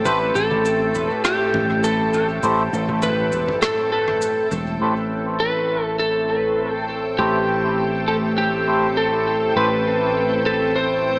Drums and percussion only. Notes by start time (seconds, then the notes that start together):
0.05 kick, cabasa
0.35 cabasa
0.51 kick
0.65 cabasa
0.95 cabasa
1.25 cross-stick, cabasa
1.54 kick, mid tom
1.84 cabasa
2.14 cabasa
2.43 kick, cabasa
2.74 cabasa
2.89 kick
3.02 mid tom, cabasa
3.32 cabasa
3.48 kick, mid tom
3.62 cross-stick, cabasa
4.08 mid tom
4.22 cabasa
4.51 cabasa